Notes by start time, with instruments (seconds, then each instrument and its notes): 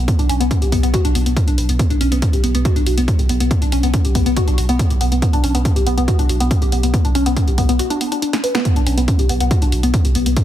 0.08 synth arpeggio sound B3, kick, closed hi-hat
0.19 sub bass B1, synth arpeggio sound D4, closed hi-hat
0.29 sub bass B1, synth arpeggio sound C#4, open hi-hat
0.40 sub bass B1, synth arpeggio sound B3, closed hi-hat
0.51 synth arpeggio sound C#4, kick, closed hi-hat
0.62 sub bass B1, synth arpeggio sound G4, closed hi-hat
0.72 sub bass B1, synth arpeggio sound B3, kick, open hi-hat
0.83 sub bass B1, synth arpeggio sound B3, closed hi-hat
0.94 synth arpeggio sound F#4, kick, closed hi-hat
1.05 sub bass B1, synth arpeggio sound D4, closed hi-hat
1.15 sub bass B1, synth arpeggio sound B3, open hi-hat
1.26 sub bass B1, synth arpeggio sound B3, closed hi-hat
1.36 synth arpeggio sound C#4, kick, closed hi-hat
1.48 sub bass B1, synth arpeggio sound D4, closed hi-hat
1.58 sub bass B1, synth arpeggio sound B4, open hi-hat
1.69 sub bass B1, synth arpeggio sound B3, closed hi-hat
1.79 synth arpeggio sound B3, kick, closed hi-hat
1.90 sub bass B1, synth arpeggio sound D4, closed hi-hat
2.01 sub bass B1, synth arpeggio sound C#4, open hi-hat
2.12 sub bass B1, synth arpeggio sound B3, closed hi-hat
2.22 synth arpeggio sound C#4, kick, closed hi-hat
2.33 sub bass B1, synth arpeggio sound G4, closed hi-hat
2.44 sub bass B1, synth arpeggio sound B3, open hi-hat
2.55 sub bass B1, synth arpeggio sound B3, closed hi-hat
2.65 synth arpeggio sound F#4, kick, closed hi-hat
2.76 sub bass B1, synth arpeggio sound D4, closed hi-hat
2.86 sub bass B1, synth arpeggio sound F#4, open hi-hat
2.98 sub bass B1, synth arpeggio sound B3, closed hi-hat
3.08 synth arpeggio sound C#4, kick, closed hi-hat
3.19 sub bass B1, synth arpeggio sound G4, closed hi-hat
3.29 sub bass B1, synth arpeggio sound B3, open hi-hat
3.40 sub bass B1, synth arpeggio sound B3, closed hi-hat
3.51 synth arpeggio sound B3, kick, closed hi-hat
3.62 sub bass B1, synth arpeggio sound D4, closed hi-hat
3.72 sub bass B1, synth arpeggio sound C#4, open hi-hat
3.83 sub bass B1, synth arpeggio sound B3, closed hi-hat
3.94 synth arpeggio sound C#4, kick, closed hi-hat
4.05 sub bass B1, synth arpeggio sound G4, closed hi-hat
4.15 sub bass B1, synth arpeggio sound B3, kick, open hi-hat
4.26 sub bass B1, synth arpeggio sound B3, closed hi-hat
4.36 synth arpeggio sound F#4, kick, closed hi-hat
4.48 sub bass B1, synth arpeggio sound D4, closed hi-hat
4.58 sub bass B1, synth arpeggio sound F#4, open hi-hat
4.69 sub bass B1, synth arpeggio sound B3, closed hi-hat
4.79 synth arpeggio sound C#4, kick, closed hi-hat
4.90 sub bass B1, synth arpeggio sound G4, closed hi-hat
5.01 sub bass B1, synth arpeggio sound B3, open hi-hat
5.12 sub bass B1, synth arpeggio sound B3, closed hi-hat
5.22 synth arpeggio sound B3, kick, closed hi-hat
5.33 sub bass B1, synth arpeggio sound D4, closed hi-hat
5.44 sub bass B1, synth arpeggio sound C#4, open hi-hat
5.55 sub bass B1, synth arpeggio sound B3, closed hi-hat
5.65 synth arpeggio sound C#4, kick, closed hi-hat
5.76 sub bass B1, synth arpeggio sound G4, closed hi-hat
5.86 sub bass B1, synth arpeggio sound B3, open hi-hat
5.97 sub bass B1, synth arpeggio sound B3, closed hi-hat
6.08 synth arpeggio sound F#4, kick, closed hi-hat
6.19 sub bass B1, synth arpeggio sound D4, closed hi-hat
6.29 sub bass B1, synth arpeggio sound F#4, open hi-hat
6.40 sub bass B1, synth arpeggio sound B3, closed hi-hat
6.51 synth arpeggio sound C#4, kick, closed hi-hat
6.62 sub bass B1, synth arpeggio sound G4, closed hi-hat
6.72 sub bass B1, synth arpeggio sound B3, open hi-hat
6.83 sub bass B1, synth arpeggio sound B3, closed hi-hat
6.94 synth arpeggio sound B3, kick, closed hi-hat
7.05 sub bass B1, synth arpeggio sound D4, closed hi-hat
7.15 sub bass B1, synth arpeggio sound C#4, open hi-hat
7.26 sub bass B1, synth arpeggio sound B3, closed hi-hat
7.37 synth arpeggio sound C#4, kick, closed hi-hat
7.48 sub bass B1, synth arpeggio sound G4, closed hi-hat
7.58 sub bass B1, synth arpeggio sound B3, kick, open hi-hat
7.69 sub bass B1, synth arpeggio sound B3, closed hi-hat
7.79 synth arpeggio sound F#4, closed hi-hat
7.90 synth arpeggio sound D4, closed hi-hat
8.01 synth arpeggio sound B3, open hi-hat
8.12 synth arpeggio sound D4, closed hi-hat
8.22 synth arpeggio sound D4, closed hi-hat
8.33 synth arpeggio sound C#4, snare, closed hi-hat
8.44 synth arpeggio sound B4, open hi-hat
8.55 synth arpeggio sound B3, snare, closed hi-hat
8.65 synth arpeggio sound B3, kick, closed hi-hat
8.76 sub bass B1, synth arpeggio sound D4, closed hi-hat
8.87 sub bass B1, synth arpeggio sound C#4, open hi-hat
8.98 sub bass B1, synth arpeggio sound B3, closed hi-hat
9.08 synth arpeggio sound C#4, kick, closed hi-hat
9.19 sub bass B1, synth arpeggio sound G4, closed hi-hat
9.29 sub bass B1, synth arpeggio sound B3, open hi-hat
9.40 sub bass B1, synth arpeggio sound B3, closed hi-hat
9.51 synth arpeggio sound F#4, kick, closed hi-hat
9.62 sub bass B1, synth arpeggio sound D4, closed hi-hat
9.72 sub bass B1, synth arpeggio sound F#4, open hi-hat
9.83 sub bass B1, synth arpeggio sound B3, closed hi-hat
9.94 synth arpeggio sound C#4, kick, closed hi-hat
10.05 sub bass B1, synth arpeggio sound G4, closed hi-hat
10.15 sub bass B1, synth arpeggio sound B3, open hi-hat
10.26 sub bass B1, synth arpeggio sound B3, closed hi-hat
10.37 synth arpeggio sound B3, kick, closed hi-hat